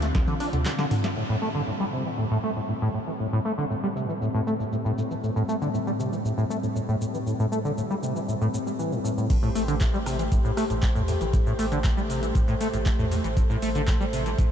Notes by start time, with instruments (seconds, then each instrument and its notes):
Already playing: sub bass D2, analog synth pad D3 C4 F4
0.02 acid bass A3, snare, closed hi-hat
0.15 sub bass D2, acid bass D3, kick, snare, closed hi-hat
0.28 acid bass D3, closed hi-hat, high tom
0.40 acid bass D4, closed hi-hat, open hi-hat
0.53 sub bass D2, acid bass D3, closed hi-hat, mid tom
0.65 acid bass D3, snare, clap, closed hi-hat
0.78 acid bass D3, snare
0.91 acid bass D3, closed hi-hat, mid tom, open hi-hat
1.04 acid bass A3, snare, closed hi-hat
1.16 acid bass A2, analog synth pad A2 G3 C4
1.29 acid bass A2
1.42 acid bass A3
1.55 acid bass D3
1.67 acid bass A2
1.80 acid bass G3
1.93 acid bass C3
2.05 acid bass E3
2.18 acid bass A2
2.31 acid bass A2
2.44 acid bass A3, cabasa
2.56 acid bass A2
2.69 acid bass A2, cabasa
2.82 acid bass A2
2.94 acid bass A2, cabasa
3.07 acid bass E3, cabasa
3.20 acid bass A2, cabasa
3.33 acid bass A2, cabasa
3.45 acid bass A3, cabasa
3.58 acid bass D3, cabasa
3.70 acid bass A2, cabasa
3.83 acid bass G3, cabasa
3.96 acid bass C3, cabasa
4.09 acid bass E3, cabasa
4.21 acid bass A2, cabasa
4.34 acid bass A2, cabasa
4.47 acid bass A3, cabasa
4.60 acid bass A2, cabasa
4.72 acid bass A2, cabasa
4.85 acid bass A2, cabasa
4.98 acid bass A2, cabasa
5.11 acid bass E3, cabasa
5.23 acid bass A2, cabasa
5.36 acid bass A2, cabasa
5.49 acid bass A3, cabasa
5.62 acid bass D3, cabasa
5.74 acid bass A2, cabasa
5.87 acid bass G3, cabasa
5.99 acid bass C3, cabasa
6.12 acid bass E3, cabasa
6.25 acid bass A2, cabasa
6.38 acid bass A2, cabasa
6.50 acid bass A3, cabasa
6.63 acid bass A2, cabasa
6.76 acid bass A2, cabasa
6.88 acid bass A2, cabasa
7.01 acid bass A2, cabasa
7.14 acid bass E3, cabasa
7.27 acid bass A2, cabasa
7.39 acid bass A2, cabasa
7.52 acid bass A3, cabasa
7.65 acid bass D3, cabasa
7.77 acid bass A2, cabasa
7.90 acid bass G3, cabasa
8.03 acid bass C3, cabasa
8.16 acid bass E3, cabasa
8.28 acid bass A2, cabasa
8.41 acid bass A2, cabasa
8.54 acid bass A2, cabasa
8.67 acid bass G3, cabasa
8.79 acid bass E3, cabasa
8.92 acid bass A2, cabasa
9.04 acid bass A2, cabasa
9.17 acid bass A2, cabasa
9.30 acid bass A2, analog synth pad A3 G4 C5, kick, closed hi-hat, crash, cabasa
9.43 acid bass A2, cabasa
9.55 sub bass A1, acid bass A3, closed hi-hat, open hi-hat, cabasa
9.68 acid bass D3, closed hi-hat, cabasa
9.81 acid bass A2, kick, snare, clap, closed hi-hat, cabasa
9.94 sub bass A1, acid bass G3, cabasa
10.06 acid bass C3, cross-stick, closed hi-hat, open hi-hat, cabasa
10.19 acid bass E3, closed hi-hat, cabasa
10.32 sub bass A1, acid bass A2, kick, closed hi-hat, cabasa
10.45 acid bass A2, cabasa
10.57 acid bass A3, cross-stick, closed hi-hat, open hi-hat, cabasa
10.70 sub bass A1, acid bass A2, closed hi-hat, cabasa
10.82 acid bass A2, kick, snare, clap, closed hi-hat, cabasa
10.95 sub bass E2, acid bass A2, cabasa
11.08 acid bass A2, closed hi-hat, open hi-hat, cabasa
11.21 sub bass A1, acid bass E3, closed hi-hat, cabasa
11.33 acid bass A2, kick, closed hi-hat, cabasa
11.46 acid bass A2, cabasa
11.59 sub bass A1, acid bass A3, closed hi-hat, open hi-hat, cabasa
11.72 acid bass D3, closed hi-hat, cabasa
11.84 acid bass A2, kick, snare, clap, closed hi-hat, cabasa
11.97 sub bass A1, acid bass G3, snare, cabasa
12.10 acid bass C3, closed hi-hat, open hi-hat, cabasa
12.22 acid bass E3, closed hi-hat, cabasa
12.35 sub bass A1, acid bass A2, kick, closed hi-hat, cabasa
12.48 acid bass A2, closed hi-hat, cabasa
12.60 acid bass A3, closed hi-hat, open hi-hat, cabasa
12.73 sub bass A1, acid bass A2, closed hi-hat, cabasa
12.86 acid bass A2, kick, snare, clap, closed hi-hat, cabasa
12.99 sub bass E2, acid bass A2, cabasa
13.11 acid bass A2, closed hi-hat, open hi-hat, cabasa
13.24 sub bass A1, acid bass E3, closed hi-hat, cabasa
13.37 acid bass A2, analog synth pad A4, kick, closed hi-hat, cabasa
13.50 acid bass A2, cabasa
13.62 sub bass A1, acid bass A3, closed hi-hat, open hi-hat, cabasa
13.75 acid bass D3, closed hi-hat, cabasa
13.87 acid bass A2, kick, snare, clap, closed hi-hat, cabasa
14.00 sub bass A1, acid bass G3, cabasa
14.13 acid bass C3, closed hi-hat, open hi-hat, cabasa
14.26 acid bass E3, closed hi-hat, cabasa
14.38 sub bass A1, acid bass A2, kick, closed hi-hat, cabasa